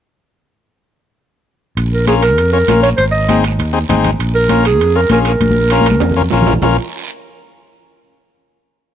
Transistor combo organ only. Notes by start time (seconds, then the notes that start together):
2.07 C#4 F4 A#4
2.53 C#4 F4 C#5
2.69 C#4 F4 A#4
3.28 C4 D#4 G#4
3.73 C4 D#4 G#4
3.89 C4 D#4 G#4
4.49 C#4 F4 A#4
4.96 C#4 F4 A#4
5.11 C#4 F4 G#4
5.72 C#4 F4 A#4
6.17 C#4 F4 A#4
6.32 C#4 F4 A#4
6.63 C#4 F4 A#4